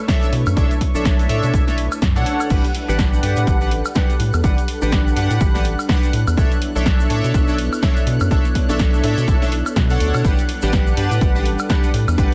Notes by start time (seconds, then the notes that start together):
Already playing: A3 D4 E4 B4 C#5 C#6
0.08 D4 A4 C#5 E5, kick, snare, closed hi-hat, shaker
0.23 closed hi-hat, shaker
0.33 B2, open hi-hat
0.47 F#2, closed hi-hat, high woodblock, shaker
0.56 B1 D4 A4 C#5 E5, kick, closed hi-hat, shaker
0.71 closed hi-hat, shaker
0.81 kick, open hi-hat
0.95 B1 D4 A4 C#5 E5, shaker
1.05 kick, snare, closed hi-hat, shaker
1.19 open hi-hat, shaker
1.29 A2 D4 A4 C#5 E5, open hi-hat
1.43 B2, closed hi-hat, shaker
1.54 B1, kick, closed hi-hat, shaker
1.67 D4 A4 C#5 E5, snare, closed hi-hat, shaker
1.78 open hi-hat
1.92 closed hi-hat, high woodblock, shaker
2.02 F#2, kick, snare, closed hi-hat, shaker
2.16 B2 D4 A4 C#5 F#5, closed hi-hat, shaker
2.26 open hi-hat
2.40 closed hi-hat, high woodblock, shaker
2.50 A1 G3 D4 G4 A4 B4 F#5 F#6, kick, closed hi-hat, crash, shaker
2.65 closed hi-hat, shaker
2.75 open hi-hat
2.88 A1 D4 G4 B4 F#5, shaker
2.99 kick, snare, closed hi-hat, shaker
3.13 shaker
3.22 G2 D4 G4 B4 F#5, open hi-hat
3.37 A2, closed hi-hat, shaker
3.47 A1, kick, closed hi-hat, shaker
3.61 D4 G4 B4 F#5, shaker
3.71 open hi-hat
3.85 high woodblock, shaker
3.95 D4 G4 B4 F#5, kick, snare, closed hi-hat, shaker
4.10 closed hi-hat, shaker
4.20 A2, open hi-hat
4.34 E2, closed hi-hat, high woodblock, shaker
4.43 A1 D4 G4 B4 F#5, kick, closed hi-hat, shaker
4.58 closed hi-hat, shaker
4.68 open hi-hat
4.82 A1 D4 G4 B4 F#5, shaker
4.92 kick, snare, closed hi-hat, shaker
5.08 shaker
5.16 G2 D4 G4 B4 F#5, open hi-hat
5.30 A2, closed hi-hat, shaker
5.41 A1, kick, closed hi-hat, shaker
5.54 D4 G4 B4 F#5, snare, shaker
5.65 open hi-hat
5.79 high woodblock, shaker
5.89 D4 G4 B4 F#5, kick, snare, closed hi-hat, shaker
6.03 closed hi-hat, shaker
6.13 A2, open hi-hat
6.27 E2, closed hi-hat, high woodblock, shaker
6.37 B1 B3 D4 E4 A4 C#5 E5, kick, closed hi-hat, shaker
6.51 closed hi-hat, shaker
6.62 open hi-hat
6.75 B1 D4 A4 C#5 E5, shaker
6.86 kick, snare, closed hi-hat, shaker
7.00 shaker
7.10 A2 D4 A4 C#5 E5, open hi-hat
7.24 B2, closed hi-hat, shaker
7.34 B1, kick, closed hi-hat, shaker
7.48 D4 A4 C#5 E5, shaker
7.58 open hi-hat
7.73 high woodblock, shaker
7.82 D4 A4 C#5 E5, kick, snare, closed hi-hat, shaker
7.97 closed hi-hat, shaker
8.07 B2, open hi-hat
8.20 F#2, closed hi-hat, high woodblock, shaker
8.31 B1 D4 A4 C#5 E5, kick, closed hi-hat, shaker
8.45 closed hi-hat, shaker
8.55 kick, open hi-hat
8.69 B1 D4 A4 C#5 E5, shaker
8.79 kick, snare, closed hi-hat, shaker
8.94 shaker
9.03 A2 D4 A4 C#5 E5, open hi-hat
9.18 B2, closed hi-hat, shaker
9.28 B1, kick, closed hi-hat, shaker
9.41 D4 A4 C#5 E5, snare, closed hi-hat, shaker
9.52 open hi-hat
9.66 closed hi-hat, high woodblock, shaker
9.76 B2, kick, snare, closed hi-hat, shaker
9.90 D4 A4 C#5 F#5, closed hi-hat, shaker
10.00 D2, open hi-hat
10.14 B2, closed hi-hat, high woodblock, shaker
10.24 A1 G3 D4 G4 B4 F#5, kick, closed hi-hat, shaker
10.38 closed hi-hat, shaker
10.49 open hi-hat
10.62 A1 D4 G4 B4 F#5, shaker
10.73 kick, snare, closed hi-hat, shaker
10.87 shaker
10.97 G2 D4 G4 B4 F#5, open hi-hat
11.11 A2, closed hi-hat, shaker
11.21 A1, kick, closed hi-hat, shaker
11.35 D4 G4 B4 F#5, shaker
11.46 open hi-hat
11.59 high woodblock, shaker
11.69 D4 G4 B4 F#5, kick, snare, closed hi-hat, shaker
11.83 closed hi-hat, shaker
11.94 A2, open hi-hat
12.08 E2, closed hi-hat, high woodblock, shaker
12.18 A1 D4 G4 B4 F#5, kick, closed hi-hat, shaker